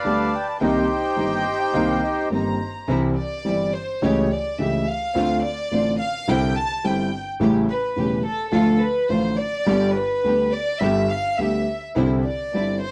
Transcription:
Already playing: bandoneon B4 D5 F5
0.04 grand piano D2 D3 G3 B3 G4, string section B3 D4 G4, violin section A5
0.35 bandoneon G5
0.61 grand piano C2 C3 D#3 A#3 C4 G4, string section A#3 C4 D#4, bandoneon D#4 G4 C5, violin section G5
1.17 grand piano G1 G2 D#3 A#3 C4 G4, string section A#3 C4 D#4, flute D#5
1.60 flute G5
1.74 grand piano C2 C3 D#3 A#3 C4 G4, string section A#3 C4 D#4, flute F5
2.03 flute D#5
2.30 grand piano G1 G2 D#3 A#3 C4 G4, string section A#3 C4 D#4, flute C5, violin section A#5
2.88 grand piano C2 C3 E3 G3 C4 G4, string section G3 C4 E4
3.19 violin section D5
3.45 grand piano G1 G2 E3 G3 C4 G4, string section G3 C4 E4
3.74 violin section C5
4.02 grand piano C#2 C#3 E3 A3 C#4 G4, string section C#3 A3 C#4 G4, violin section C#5
4.32 violin section D5
4.58 grand piano C#2 C#3 E3 A3 C#4 G4, string section C#3 A3 C#4 G4, violin section E5
4.89 violin section F5
5.15 grand piano D2 D3 A3 C4 F4, string section C4 D4 F4
5.43 violin section D5
5.71 grand piano A1 A2 D3 A3 C4 F4, string section C4 D4 F4
6.01 violin section F5
6.28 grand piano C2 C3 D3 G3 C4 E4, string section C4 D4 E4, violin section G5
6.57 violin section A5
6.84 grand piano G1 G2 D3 G3 C4 E4, string section C4 D4 E4, violin section G5
7.40 grand piano A1 A2 C#3 G3 A3 E4, string section A3 C#4 G4
7.69 violin section B4
7.96 grand piano E1 E2 C#3 G3 A3 E4, string section A3 C#4 G4
8.25 violin section A4
8.51 grand piano D2 D3 F3 A3 F4, string section A3 D4 F4, violin section A4
8.79 violin section B4
9.07 grand piano A1 A2 D3 F3 A3 F4, string section A3 D4 F4, violin section C5
9.36 violin section D5
9.66 grand piano G1 G2 D3 G3 B3 G4, string section B3 D4 G4
9.93 violin section B4
10.24 grand piano D2 D3 G3 B3 G4, string section B3 D4 G4
10.51 violin section D5
10.78 grand piano G1 G2 D3 G3 B3 G4, string section B3 D4 G4, violin section E5
11.08 violin section F5
11.37 grand piano D2 D3 G3 B3 G4, string section B3 D4 G4, violin section E5
11.96 grand piano C2 C3 D3 G3 C4 E4, string section C4 D4 E4
12.25 violin section D5
12.53 grand piano G1 G2 D3 G3 C4 E4, string section C4 D4 E4
12.82 violin section C5

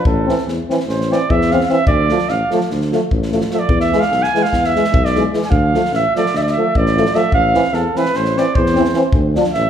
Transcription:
0.05 tuba A1, flugelhorn A4, kick
0.26 trombone E3, euphonium C4, snare
0.38 snare
0.47 tuba E2, snare
0.69 trombone E3, euphonium C4, snare
0.80 snare
0.87 tuba A1, flugelhorn C5, snare
1.01 snare
1.10 trombone E3, euphonium C4, flugelhorn D5, snare
1.30 tuba E2, flugelhorn E5, kick
1.41 snare
1.51 trombone E3, euphonium C4, flugelhorn F5, snare
1.61 flugelhorn F5, snare
1.69 trombone E3, euphonium C4, flugelhorn E5, snare
1.87 tuba D2, flugelhorn D5, kick
2.09 trombone F3, euphonium A3, snare
2.19 snare
2.28 tuba A1, flugelhorn F5, snare
2.51 trombone F3, euphonium A3, snare
2.61 snare
2.70 tuba D2, snare
2.81 snare
2.91 trombone F3, euphonium A3, snare
3.11 tuba A1, kick
3.22 snare
3.32 trombone F3, euphonium A3, snare
3.41 snare
3.51 trombone F3, euphonium A3, flugelhorn E5, snare
3.59 flugelhorn D5
3.69 tuba E2, kick
3.80 flugelhorn E5, snare
3.92 trombone E3, euphonium G#3, snare
4.00 flugelhorn F5, snare
4.11 tuba B1, snare
4.23 flugelhorn G#5, snare
4.34 trombone E3, euphonium G#3, snare
4.43 flugelhorn F5, snare
4.53 tuba E2, kick, snare
4.64 flugelhorn E5, snare
4.76 trombone E3, euphonium G#3, snare
4.84 snare
4.92 tuba B1, kick
5.05 flugelhorn D5, snare
5.15 trombone E3, euphonium G#3, snare
5.33 trombone E3, euphonium G#3, snare
5.42 flugelhorn G#5, snare
5.50 tuba D2, flugelhorn F5, kick
5.74 trombone F3, euphonium A3, snare
5.85 snare
5.92 tuba A1, flugelhorn E5, snare
6.15 trombone F3, euphonium A3, flugelhorn D5, snare
6.26 snare
6.33 tuba D2, flugelhorn E5, snare
6.42 flugelhorn D5
6.47 snare
6.51 flugelhorn E5
6.57 trombone F3, euphonium A3
6.75 tuba A1, flugelhorn D5, kick
6.86 snare
6.97 trombone F3, euphonium A3, snare
7.06 snare
7.14 trombone F3, euphonium A3, flugelhorn E5, snare
7.32 tuba A1, flugelhorn F5, kick
7.54 trombone E3, euphonium C4, snare
7.64 snare
7.73 tuba E2, flugelhorn A4, snare
7.95 trombone E3, euphonium C4, flugelhorn B4, snare
8.05 snare
8.14 tuba A1, flugelhorn C5, snare
8.25 snare
8.36 trombone E3, euphonium C4, flugelhorn D5, snare
8.55 tuba E2, flugelhorn C5, kick
8.66 snare
8.74 trombone E3, euphonium C4, snare
8.85 snare
8.94 trombone E3, euphonium C4, snare
9.12 tuba D2, kick
9.35 trombone F3, euphonium D4, snare
9.44 snare
9.54 tuba A1, flugelhorn E5, snare

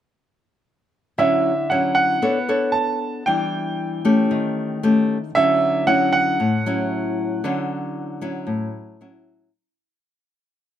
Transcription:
1.18 nylon-string guitar D3 F#3 C#4 E4, grand piano E5
1.70 nylon-string guitar F#3 C#4 E4, grand piano F#5
1.95 grand piano F#5
2.22 nylon-string guitar B3 D4 A4 C#5
2.49 nylon-string guitar D4 A4 C#5
2.72 grand piano A5
3.26 nylon-string guitar E3 G3 D4, grand piano G5
4.05 nylon-string guitar A3 C#4 G4
4.31 nylon-string guitar D#3
4.83 nylon-string guitar A3 C#4 G4
5.35 nylon-string guitar D3 F#3 C#4 E4, grand piano E5
5.87 nylon-string guitar F#3 C#4 E4, grand piano F#5
6.13 grand piano F#5
6.40 nylon-string guitar A2
6.66 nylon-string guitar F#3 C#4 E4
7.44 nylon-string guitar D3 F#3 C#4 E4
8.21 nylon-string guitar F#3 C#4 E4
8.47 nylon-string guitar A2
9.01 nylon-string guitar F#3 C#4 E4

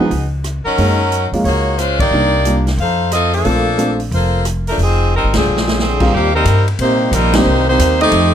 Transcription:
Already playing: saxophone section B3 D#4 G#4
0.00 grand piano D#4
0.11 upright bass C#2, open hi-hat
0.44 cross-stick, closed hi-hat
0.65 saxophone section F#3 C#4 D#4 A#4, muted upright bass stroke
0.78 upright bass F#2, grand piano G#3 A#3 C#4 D#4, open hi-hat
1.12 closed hi-hat
1.32 upright bass F2, grand piano G#3 A#3 C#4 F4, open hi-hat
1.44 upright bass C#2, saxophone section A#3 D#4 F#4 C#5, open hi-hat
1.78 saxophone section G#3 C#4 F4 C5, cross-stick, closed hi-hat
1.99 saxophone section A#3 D#4 G4 D5, kick, ride
2.11 upright bass C2, grand piano G3 A#3 D4 D#4
2.45 grand piano G3 A#3 D4 F4, closed hi-hat
2.67 snare, open hi-hat
2.77 upright bass F2, saxophone section D#4 A4 C5 F5, open hi-hat
3.12 saxophone section C4 F4 A4 D#5, cross-stick, closed hi-hat
3.33 saxophone section F3 A#3 D4 A4, open hi-hat
3.45 upright bass A#1, grand piano A3 C4 D4 F4, open hi-hat
3.78 grand piano A3 C4 D4 F4, closed hi-hat
4.00 open hi-hat
4.11 upright bass F1, saxophone section A#3 F4 A4 C5, open hi-hat
4.45 cross-stick, closed hi-hat
4.67 saxophone section F3 A3 D4 A#4, open hi-hat
4.78 upright bass F1, open hi-hat
4.82 saxophone section F3 C4 D#4 G#4
5.16 saxophone section G3 C4 D#4 A#4
5.24 upright bass G#1
5.34 upright bass B1, trombone section D3 F3 G#3, saxophone section C4 G#4, snare, ride
5.38 saxophone section F3 D4
5.47 upright bass A#1
5.57 snare
5.68 snare
5.79 trombone section D3 F3 G#3, saxophone section F3 C4 D4 G#4, snare
6.00 grand piano D#2 G3 A#3 C4 F4, kick, crash
6.12 upright bass D#2, trombone section A#2 C3 G3, saxophone section D#3 A#3 C4 G4
6.34 trombone section C3 G3 A#3, saxophone section G3 C4 D#4 A#4
6.45 upright bass G2, hi-hat pedal, ride
6.68 ride
6.79 upright bass A#2, trombone section C3 G3 C4, saxophone section A#3 D#4 G4 C5, ride
7.11 upright bass A#1, trombone section C3 G3 A#3, saxophone section G3 C4 D#4 A#4, hi-hat pedal, ride
7.33 trombone section D#3 G3 C4, grand piano G3 A#3 C4 D4 D#4, saxophone section A#3 D#4 G4 C5, snare, ride
7.45 upright bass C2
7.68 trombone section D#3 G3 C4, saxophone section A#3 D#4 G4 C5
7.79 upright bass D#2, hi-hat pedal, ride
8.00 trombone section A3 C4 D#4, saxophone section C4 G4 A4 D#5, ride
8.12 upright bass F2, ride

